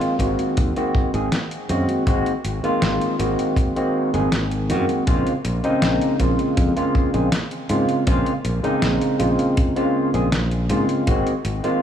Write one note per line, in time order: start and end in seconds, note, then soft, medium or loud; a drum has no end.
0.00 0.15 D#3 medium
0.00 0.15 G#3 medium
0.00 0.15 A#3 medium
0.00 0.16 C4 medium
0.00 0.16 F4 loud
0.00 closed hi-hat soft
0.19 0.34 G#1 medium
0.19 0.71 D#3 medium
0.19 0.72 G#3 medium
0.19 0.72 A#3 medium
0.19 0.72 C4 medium
0.19 0.72 F#4 medium
0.19 kick medium
0.19 closed hi-hat medium
0.39 closed hi-hat soft
0.57 0.72 D#2 medium
0.57 kick loud
0.57 closed hi-hat medium
0.76 1.09 D#3 medium
0.76 1.09 G#3 medium
0.76 1.09 A#3 medium
0.76 1.10 C4 medium
0.76 1.10 F#4 loud
0.76 closed hi-hat soft
0.95 kick loud
1.13 1.28 G#1 medium
1.13 1.28 D#3 medium
1.13 1.28 G#3 medium
1.13 1.29 A#3 medium
1.13 1.29 C4 medium
1.13 1.29 G#4 medium
1.13 closed hi-hat soft
1.32 snare loud
1.32 closed hi-hat medium
1.51 closed hi-hat soft
1.69 1.84 F#2 medium
1.69 2.02 D#3 medium
1.69 2.03 G#3 medium
1.69 2.03 A#3 medium
1.69 2.03 C4 medium
1.69 2.03 F#4 loud
1.69 closed hi-hat medium
1.89 closed hi-hat soft
2.06 2.22 G#1 loud
2.06 2.31 D#3 medium
2.06 2.31 G#3 medium
2.06 2.32 A#3 medium
2.06 2.32 C4 medium
2.06 2.32 F#4 loud
2.06 kick loud
2.06 closed hi-hat loud
2.26 closed hi-hat soft
2.45 2.59 G#1 medium
2.45 closed hi-hat medium
2.63 3.15 D#3 medium
2.63 3.15 G#3 medium
2.63 3.15 A#3 medium
2.63 3.16 C4 medium
2.63 3.16 F4 loud
2.63 muted fingered electric bass stroke soft
2.63 closed hi-hat soft
2.82 2.97 G#1 medium
2.82 snare loud
2.82 closed hi-hat medium
3.01 closed hi-hat soft
3.19 3.34 G#1 medium
3.19 3.71 D#3 medium
3.19 3.72 G#3 medium
3.19 3.72 A#3 medium
3.19 3.72 C4 medium
3.19 3.72 F#4 medium
3.19 closed hi-hat medium
3.39 closed hi-hat soft
3.56 kick loud
3.56 closed hi-hat loud
3.76 4.09 D#3 medium
3.76 4.09 G#3 medium
3.76 4.09 A#3 medium
3.76 4.09 C4 medium
3.76 4.10 F#4 medium
3.76 closed hi-hat soft
4.13 4.71 G#1 medium
4.13 4.28 D#3 medium
4.13 4.28 G#3 medium
4.13 4.28 A#3 medium
4.13 4.29 C4 medium
4.13 4.29 G#4 medium
4.13 closed hi-hat soft
4.32 snare loud
4.32 closed hi-hat medium
4.51 closed hi-hat soft
4.69 4.84 F#2 medium
4.69 5.02 D#3 medium
4.69 5.03 G#3 medium
4.69 5.03 A#3 medium
4.69 5.03 C4 medium
4.69 5.03 F#4 loud
4.69 closed hi-hat medium
4.89 closed hi-hat soft
5.06 5.22 A#1 loud
5.06 5.31 C#3 loud
5.06 5.31 G#3 medium
5.06 5.32 A#3 medium
5.06 5.32 C4 medium
5.06 5.32 F4 loud
5.06 kick loud
5.06 closed hi-hat loud
5.27 closed hi-hat soft
5.45 5.59 A#1 medium
5.45 closed hi-hat medium
5.63 6.15 C#3 loud
5.63 6.15 G#3 medium
5.63 6.15 A#3 medium
5.63 6.15 C4 medium
5.63 6.16 D#4 loud
5.63 closed hi-hat soft
5.82 5.97 A#1 medium
5.82 snare loud
5.82 closed hi-hat medium
6.01 closed hi-hat soft
6.19 6.34 A#1 medium
6.19 6.72 C#3 medium
6.19 6.72 G#3 medium
6.19 6.72 A#3 medium
6.19 6.72 C4 medium
6.19 6.72 F4 medium
6.19 kick medium
6.19 closed hi-hat medium
6.39 closed hi-hat soft
6.57 6.72 F2 medium
6.57 kick loud
6.57 closed hi-hat medium
6.76 7.09 C#3 medium
6.76 7.09 G#3 medium
6.76 7.09 A#3 medium
6.76 7.10 C4 medium
6.76 7.10 F4 loud
6.76 closed hi-hat soft
6.95 kick loud
7.13 7.28 A#1 medium
7.13 7.28 C#3 medium
7.13 7.28 G#3 medium
7.13 7.29 A#3 medium
7.13 7.29 C4 medium
7.13 7.29 G#4 medium
7.13 closed hi-hat soft
7.32 snare loud
7.32 closed hi-hat medium
7.51 closed hi-hat soft
7.69 7.84 G#2 medium
7.69 8.03 C#3 medium
7.69 8.03 G#3 medium
7.69 8.03 A#3 medium
7.69 8.03 C4 medium
7.69 8.03 F4 loud
7.69 closed hi-hat medium
7.89 closed hi-hat soft
8.07 8.22 A#1 loud
8.07 8.31 C#3 medium
8.07 8.31 G#3 medium
8.07 8.32 A#3 medium
8.07 8.32 C4 medium
8.07 8.32 F4 loud
8.07 kick loud
8.07 closed hi-hat medium
8.26 closed hi-hat soft
8.45 8.59 A#1 medium
8.45 closed hi-hat medium
8.63 9.15 C#3 loud
8.63 9.15 G#3 medium
8.63 9.15 A#3 medium
8.63 9.15 C4 medium
8.63 9.16 D#4 loud
8.63 closed hi-hat soft
8.82 8.97 A#1 medium
8.82 snare loud
8.82 closed hi-hat medium
9.01 closed hi-hat soft
9.19 9.35 A#1 medium
9.19 9.71 C#3 medium
9.19 9.72 G#3 medium
9.19 9.72 A#3 medium
9.19 9.72 C4 medium
9.19 9.72 F4 medium
9.19 closed hi-hat medium
9.39 closed hi-hat soft
9.57 kick loud
9.57 closed hi-hat medium
9.76 10.09 C#3 medium
9.76 10.09 G#3 medium
9.76 10.09 A#3 medium
9.76 10.09 C4 medium
9.76 10.10 F4 loud
9.76 closed hi-hat soft
10.13 10.71 A#1 medium
10.13 10.28 C#3 medium
10.13 10.28 G#3 medium
10.13 10.29 A#3 medium
10.13 10.29 C4 medium
10.13 10.29 G#4 medium
10.13 closed hi-hat soft
10.32 snare loud
10.32 closed hi-hat medium
10.51 closed hi-hat soft
10.69 10.85 G#2 medium
10.69 11.03 C#3 medium
10.69 11.03 G#3 medium
10.69 11.03 A#3 medium
10.69 11.03 C4 medium
10.69 11.03 F4 loud
10.69 closed hi-hat medium
10.89 closed hi-hat soft
11.07 11.22 G#1 medium
11.07 11.31 D#3 loud
11.07 11.31 G#3 medium
11.07 11.32 A#3 medium
11.07 11.32 C4 medium
11.07 11.32 F#4 loud
11.07 kick loud
11.07 closed hi-hat medium
11.27 closed hi-hat soft
11.45 11.59 G#1 medium
11.45 closed hi-hat medium
11.63 11.82 D#3 medium
11.63 11.82 G#3 medium
11.63 11.82 A#3 medium
11.63 11.82 C4 medium
11.63 11.82 F4 loud
11.63 closed hi-hat soft